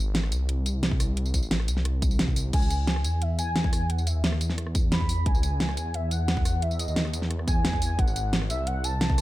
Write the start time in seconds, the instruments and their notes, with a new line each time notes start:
Already playing: detuned saw bass G#1
0.15 snare, closed hi-hat
0.23 cross-stick
0.32 detuned saw bass C2, closed hi-hat, tambourine
0.49 closed hi-hat
0.66 closed hi-hat, tambourine
0.83 snare, closed hi-hat
0.91 kick
1.00 cross-stick, open hi-hat, tambourine
1.17 closed hi-hat
1.26 tambourine
1.34 kick, closed hi-hat, tambourine
1.43 detuned saw bass A1, tambourine
1.51 snare, closed hi-hat
1.60 cross-stick
1.68 detuned saw bass C2, closed hi-hat, tambourine
1.77 snare
1.85 cross-stick, closed hi-hat
2.02 kick, closed hi-hat, tambourine
2.11 tambourine
2.19 snare, closed hi-hat
2.28 kick
2.36 detuned saw bass C2, open hi-hat, tambourine
2.53 detuned saw bass C#2, soft synth lead G#5, kick, closed hi-hat, crash
2.62 tambourine
2.70 closed hi-hat, tambourine
2.87 soft synth lead G#5, snare, closed hi-hat
2.96 cross-stick
3.04 detuned saw bass E2, closed hi-hat, tambourine
3.22 soft synth lead E5, closed hi-hat
3.39 soft synth lead G#5, closed hi-hat, tambourine
3.56 snare, closed hi-hat
3.64 kick
3.73 cross-stick, open hi-hat, tambourine
3.90 soft synth lead F#5, closed hi-hat
3.98 tambourine
4.07 soft synth lead E5, closed hi-hat, tambourine
4.15 detuned saw bass D#2
4.24 snare, closed hi-hat
4.32 cross-stick
4.41 detuned saw bass E2, closed hi-hat, tambourine
4.50 snare
4.58 cross-stick, closed hi-hat
4.67 cross-stick
4.75 kick, closed hi-hat, tambourine
4.92 soft synth lead B5, snare, closed hi-hat
5.01 kick
5.09 open hi-hat, tambourine
5.26 detuned saw bass C#2, soft synth lead G#5, kick, closed hi-hat
5.35 tambourine
5.43 closed hi-hat, tambourine
5.60 soft synth lead G#5, snare, closed hi-hat
5.69 cross-stick
5.77 detuned saw bass E2, closed hi-hat, tambourine
5.94 soft synth lead E5, closed hi-hat
6.11 soft synth lead F#5, closed hi-hat, tambourine
6.28 snare, closed hi-hat
6.37 kick
6.45 cross-stick, open hi-hat, tambourine
6.62 soft synth lead E5, closed hi-hat
6.71 tambourine
6.79 soft synth lead D#5, closed hi-hat, tambourine
6.88 detuned saw bass D#2, tambourine
6.96 snare, closed hi-hat
7.05 cross-stick
7.13 detuned saw bass E2, closed hi-hat, tambourine
7.22 snare
7.31 cross-stick, closed hi-hat
7.39 cross-stick
7.48 soft synth lead G#5, kick, closed hi-hat, tambourine
7.64 soft synth lead G#5, snare, closed hi-hat
7.73 kick
7.82 open hi-hat, tambourine
7.99 detuned saw bass G#1, soft synth lead F#5, kick, closed hi-hat
8.07 tambourine
8.16 closed hi-hat, tambourine
8.33 snare, closed hi-hat
8.42 cross-stick
8.50 detuned saw bass C2, soft synth lead E5, closed hi-hat, tambourine
8.67 soft synth lead F#5, closed hi-hat
8.84 soft synth lead A5, closed hi-hat, tambourine
9.01 soft synth lead A5, snare, closed hi-hat
9.10 kick
9.18 cross-stick, open hi-hat, tambourine